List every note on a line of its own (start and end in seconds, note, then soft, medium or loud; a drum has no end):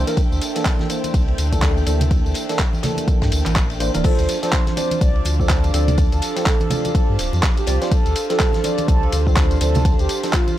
0.00 4.00 A#3 medium
0.00 4.00 D4 medium
0.00 10.58 D4 medium
0.00 10.58 G4 medium
0.00 4.00 A4 medium
0.00 4.00 C5 medium
0.00 10.58 C5 medium
0.00 0.28 E5 medium
0.00 4.00 E5 medium
0.00 4.05 G5 medium
0.07 0.20 E3 medium
0.07 0.20 A#3 medium
0.07 0.20 D4 medium
0.07 0.20 A#4 medium
0.07 snare soft
0.07 closed hi-hat medium
0.07 tambourine soft
0.13 5.54 D5 medium
0.13 ride medium
0.17 kick loud
0.17 closed hi-hat medium
0.17 tambourine soft
0.31 0.40 D2 loud
0.31 tambourine soft
0.42 open hi-hat loud
0.42 ride medium
0.42 tambourine medium
0.55 0.87 E3 medium
0.55 0.87 A#3 medium
0.55 0.87 D4 medium
0.55 0.87 A4 medium
0.55 snare medium
0.55 closed hi-hat medium
0.55 tambourine soft
0.65 kick loud
0.65 snare loud
0.65 clap loud
0.65 closed hi-hat medium
0.65 ride medium
0.65 tambourine soft
0.79 snare medium
0.79 high conga medium
0.89 1.49 E3 medium
0.89 1.49 A#3 medium
0.89 1.49 D4 medium
0.89 1.49 C5 medium
0.89 open hi-hat loud
0.89 ride medium
0.89 tambourine medium
1.04 closed hi-hat medium
1.04 ride soft
1.04 tambourine soft
1.04 high conga medium
1.14 1.34 C2 loud
1.14 kick loud
1.14 closed hi-hat medium
1.14 ride medium
1.14 tambourine soft
1.28 ride soft
1.38 1.84 D2 medium
1.38 open hi-hat loud
1.38 ride medium
1.38 tambourine medium
1.52 1.84 E3 medium
1.52 1.84 A#3 medium
1.52 1.84 D4 medium
1.52 1.84 A4 medium
1.52 kick medium
1.52 closed hi-hat medium
1.52 tambourine soft
1.62 kick loud
1.62 snare loud
1.62 clap loud
1.62 closed hi-hat medium
1.62 ride medium
1.62 tambourine soft
1.77 tambourine soft
1.86 2.21 D2 medium
1.86 2.46 E3 medium
1.86 2.46 A#3 medium
1.86 2.46 D4 medium
1.86 2.46 A4 medium
1.86 open hi-hat loud
1.86 ride medium
1.86 tambourine medium
2.01 closed hi-hat medium
2.01 ride soft
2.01 tambourine soft
2.01 low conga medium
2.11 kick loud
2.11 closed hi-hat medium
2.11 ride medium
2.11 tambourine soft
2.25 2.33 D2 loud
2.25 tambourine soft
2.34 open hi-hat loud
2.34 ride medium
2.34 tambourine medium
2.49 2.62 E3 medium
2.49 2.62 A#3 medium
2.49 2.62 D4 medium
2.49 2.62 A4 medium
2.49 snare soft
2.49 open hi-hat medium
2.49 tambourine soft
2.59 kick loud
2.59 snare loud
2.59 clap loud
2.59 closed hi-hat medium
2.59 ride medium
2.59 tambourine soft
2.73 tambourine soft
2.73 high conga medium
2.83 3.78 E3 medium
2.83 3.78 A#3 medium
2.83 3.78 D4 medium
2.83 3.78 A4 medium
2.83 snare loud
2.83 open hi-hat loud
2.83 ride medium
2.83 tambourine medium
2.83 low conga medium
2.97 closed hi-hat medium
2.97 tambourine soft
2.97 high conga medium
3.08 kick loud
3.08 closed hi-hat medium
3.08 ride medium
3.08 tambourine soft
3.22 3.30 G2 loud
3.22 kick medium
3.22 snare loud
3.22 ride medium
3.22 tambourine soft
3.32 3.43 D2 medium
3.32 open hi-hat loud
3.32 ride medium
3.32 tambourine medium
3.46 3.90 A1 medium
3.46 clap soft
3.46 closed hi-hat medium
3.46 tambourine soft
3.46 high conga medium
3.56 kick loud
3.56 clap loud
3.56 open hi-hat medium
3.56 tambourine soft
3.70 ride medium
3.70 tambourine soft
3.80 3.91 E3 medium
3.80 3.91 A#3 medium
3.80 3.91 D4 medium
3.80 3.91 C5 loud
3.80 open hi-hat loud
3.80 tambourine medium
3.94 4.03 D1 medium
3.94 4.03 E3 medium
3.94 4.03 A#3 medium
3.94 4.03 D4 medium
3.94 4.03 A#4 loud
3.94 closed hi-hat medium
3.94 ride medium
3.94 tambourine soft
3.94 high conga medium
4.04 4.37 F3 loud
4.04 4.37 C4 medium
4.04 4.37 D4 medium
4.04 4.37 A4 loud
4.04 4.38 C5 loud
4.04 10.58 C5 medium
4.04 10.58 F5 medium
4.04 10.58 A5 medium
4.04 7.88 D6 medium
4.04 kick loud
4.04 closed hi-hat medium
4.04 crash loud
4.04 ride medium
4.04 tambourine soft
4.19 4.27 D2 loud
4.19 closed hi-hat soft
4.19 tambourine soft
4.29 open hi-hat loud
4.29 ride medium
4.29 tambourine medium
4.42 4.75 F3 medium
4.42 4.75 C4 medium
4.42 4.75 D4 medium
4.42 4.75 A4 medium
4.42 4.63 C5 medium
4.42 snare soft
4.42 closed hi-hat medium
4.42 tambourine soft
4.52 10.58 F5 loud
4.52 kick loud
4.52 snare loud
4.52 clap loud
4.52 closed hi-hat medium
4.52 ride medium
4.52 tambourine soft
4.67 4.97 C5 loud
4.67 snare medium
4.67 closed hi-hat soft
4.67 high conga medium
4.77 5.36 F3 medium
4.77 5.36 C4 medium
4.77 5.36 D4 medium
4.77 5.36 D5 medium
4.77 open hi-hat loud
4.77 ride medium
4.77 tambourine medium
4.77 muted conga medium
4.91 closed hi-hat medium
4.91 ride soft
4.91 tambourine soft
4.91 high conga medium
5.01 5.22 C2 medium
5.01 5.34 D5 loud
5.01 kick loud
5.01 closed hi-hat medium
5.01 ride medium
5.01 tambourine soft
5.16 ride soft
5.25 5.71 D2 medium
5.25 open hi-hat loud
5.25 ride medium
5.25 tambourine medium
5.25 muted conga medium
5.39 5.71 F3 medium
5.39 5.71 C4 medium
5.39 5.71 D4 medium
5.39 5.71 A4 medium
5.39 kick medium
5.39 tambourine soft
5.49 kick loud
5.49 snare loud
5.49 clap loud
5.49 closed hi-hat medium
5.49 ride medium
5.49 tambourine soft
5.64 closed hi-hat soft
5.64 tambourine soft
5.74 6.08 D2 loud
5.74 6.33 F3 medium
5.74 6.33 C4 medium
5.74 6.33 D4 medium
5.74 6.33 A4 medium
5.74 6.07 D5 loud
5.74 open hi-hat loud
5.74 ride medium
5.74 tambourine medium
5.88 closed hi-hat soft
5.88 ride soft
5.88 tambourine soft
5.88 low conga loud
5.98 kick loud
5.98 closed hi-hat medium
5.98 ride medium
5.98 tambourine soft
6.12 6.20 D2 loud
6.12 6.43 A4 loud
6.12 closed hi-hat soft
6.12 tambourine soft
6.22 open hi-hat loud
6.22 ride medium
6.22 tambourine medium
6.36 6.49 F3 medium
6.36 6.49 C4 medium
6.36 6.49 D4 medium
6.36 6.49 A4 medium
6.36 snare soft
6.36 open hi-hat medium
6.36 tambourine soft
6.46 6.80 A4 loud
6.46 kick loud
6.46 snare loud
6.46 clap loud
6.46 closed hi-hat medium
6.46 ride medium
6.46 tambourine soft
6.60 closed hi-hat soft
6.60 high conga medium
6.70 7.65 F3 medium
6.70 7.65 C4 medium
6.70 7.65 D4 medium
6.70 7.65 A4 medium
6.70 open hi-hat loud
6.70 ride medium
6.70 tambourine medium
6.70 low conga loud
6.85 7.15 A4 medium
6.85 closed hi-hat medium
6.85 tambourine soft
6.85 high conga medium
6.95 kick loud
6.95 closed hi-hat medium
6.95 ride medium
6.95 tambourine soft
7.09 7.17 G2 loud
7.19 7.30 D1 medium
7.19 snare medium
7.19 open hi-hat loud
7.19 ride medium
7.19 tambourine medium
7.33 7.41 F2 medium
7.33 tambourine soft
7.33 muted conga medium
7.43 kick loud
7.43 snare loud
7.43 clap loud
7.43 closed hi-hat medium
7.43 ride medium
7.43 tambourine soft
7.57 7.88 G4 loud
7.57 closed hi-hat soft
7.57 tambourine soft
7.67 7.79 C2 loud
7.67 7.78 F3 medium
7.67 7.78 C4 medium
7.67 7.78 D4 medium
7.67 7.78 D5 loud
7.67 open hi-hat loud
7.67 ride medium
7.67 tambourine medium
7.81 7.94 F3 medium
7.81 7.94 C4 medium
7.81 7.94 D4 medium
7.81 7.94 C5 medium
7.81 snare medium
7.81 closed hi-hat soft
7.81 tambourine soft
7.91 8.25 A4 loud
7.91 10.58 C6 medium
7.91 kick loud
7.91 closed hi-hat medium
7.91 ride medium
7.91 tambourine soft
8.06 8.14 D2 loud
8.06 closed hi-hat soft
8.06 tambourine soft
8.16 open hi-hat loud
8.16 ride medium
8.16 tambourine medium
8.30 8.62 F3 medium
8.30 8.62 C4 medium
8.30 8.62 D4 medium
8.30 8.62 A4 medium
8.30 8.51 A4 medium
8.30 snare medium
8.30 closed hi-hat medium
8.30 tambourine soft
8.40 kick loud
8.40 snare loud
8.40 clap loud
8.40 closed hi-hat medium
8.40 ride loud
8.40 tambourine soft
8.53 8.85 A4 loud
8.53 snare medium
8.53 closed hi-hat soft
8.53 high conga medium
8.64 9.23 F3 medium
8.64 9.23 C4 medium
8.64 9.23 D4 medium
8.64 9.23 D5 medium
8.64 open hi-hat loud
8.64 ride medium
8.64 tambourine medium
8.64 muted conga medium
8.78 closed hi-hat soft
8.78 ride soft
8.78 tambourine soft
8.78 high conga medium
8.88 9.09 C2 medium
8.88 9.21 A4 loud
8.88 kick loud
8.88 closed hi-hat medium
8.88 ride medium
8.88 tambourine soft
9.03 ride soft
9.12 9.58 D2 medium
9.12 open hi-hat loud
9.12 ride medium
9.12 tambourine medium
9.12 muted conga medium
9.27 9.58 F3 medium
9.27 9.58 C4 medium
9.27 9.58 D4 medium
9.27 9.58 A4 medium
9.27 kick medium
9.27 tambourine soft
9.36 kick loud
9.36 snare loud
9.36 clap loud
9.36 closed hi-hat medium
9.36 ride medium
9.36 tambourine soft
9.51 closed hi-hat soft
9.51 tambourine soft
9.61 9.95 D2 medium
9.61 10.20 F3 medium
9.61 10.20 C4 medium
9.61 10.20 D4 medium
9.61 9.94 A4 medium
9.61 10.20 A4 medium
9.61 open hi-hat loud
9.61 ride medium
9.61 tambourine medium
9.74 closed hi-hat soft
9.74 ride soft
9.74 tambourine soft
9.74 low conga loud
9.85 kick loud
9.85 closed hi-hat medium
9.85 ride medium
9.85 tambourine soft
9.99 10.07 D2 loud
9.99 10.30 G4 loud
9.99 closed hi-hat soft
9.99 tambourine soft
10.09 open hi-hat loud
10.09 ride medium
10.09 tambourine medium
10.23 10.36 F3 medium
10.23 10.36 C4 medium
10.23 10.36 D4 medium
10.23 10.36 A4 medium
10.23 snare medium
10.23 open hi-hat medium
10.23 tambourine soft
10.33 10.58 F4 loud
10.33 kick loud
10.33 snare loud
10.33 clap loud
10.33 closed hi-hat medium
10.33 ride medium
10.33 tambourine soft
10.48 closed hi-hat soft
10.48 tambourine soft
10.48 high conga medium